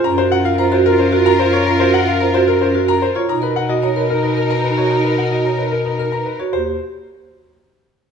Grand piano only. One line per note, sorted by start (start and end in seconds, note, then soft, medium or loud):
0.04 0.22 A#5 medium
0.18 0.35 C5 medium
0.32 0.49 F#5 medium
0.45 0.63 F5 loud
0.59 0.76 A#5 medium
0.73 0.90 C5 medium
0.86 1.03 A#4 loud
0.99 1.17 C5 medium
1.13 1.30 A#4 medium
1.26 1.44 A#5 loud
1.39 1.57 C5 medium
1.53 1.71 C#5 medium
1.67 1.84 A#5 medium
1.80 1.98 C5 medium
1.94 2.11 F#5 medium
2.07 2.25 F5 medium
2.20 2.38 A#5 medium
2.34 2.52 C5 medium
2.48 2.65 A#4 medium
2.61 2.79 C5 medium
2.75 2.92 A#4 medium
2.89 3.06 A#5 loud
3.02 3.19 C5 medium
3.16 3.33 C#5 medium
3.29 3.47 A#5 medium
3.43 3.60 B4 medium
3.56 3.73 F#5 medium
3.69 3.87 D#5 medium
3.83 4.01 A#5 medium
3.97 4.14 B4 medium
4.10 4.28 A#4 medium
4.24 4.41 B4 medium
4.37 4.55 A#4 medium
4.50 4.68 A#5 medium
4.64 4.81 B4 medium
4.78 4.95 C#5 medium
4.91 5.08 A#5 medium
5.04 5.22 B4 medium
5.18 5.36 F#5 medium
5.31 5.49 D#5 medium
5.45 5.62 A#5 medium
5.58 5.76 B4 soft
5.72 5.89 A#4 medium
5.85 6.03 B4 soft
5.99 6.17 A#4 medium
6.12 6.30 A#5 medium
6.26 6.44 B4 medium
6.39 6.57 C#5 medium
6.53 6.78 C5 medium